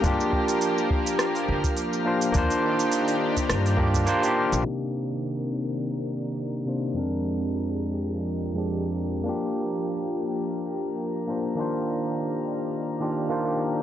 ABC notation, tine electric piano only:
X:1
M:4/4
L:1/16
Q:"Swing 16ths" 1/4=104
K:Cm
V:1 name="Tine electric piano"
[B,DFG]12- [B,DFG]2 [B,DFc]2 | [B,DFc]8- [B,DFc]2 [B,DFG]2 [B,DFc] [B,DFG] z2 | [C,B,DEG]12- [C,B,DEG]2 [C,B,DEc]2 | [F,,A,CDB]8- [F,,A,CDB]2 z [F,,A,CDG]4- [F,,A,CDG] |
[B,DFG]12- [B,DFG]2 [B,DFc]2 | [E,B,DFc]8- [E,B,DFc]2 [E,B,DFG]2 [E,B,DFc] [E,B,DFG] z2 |]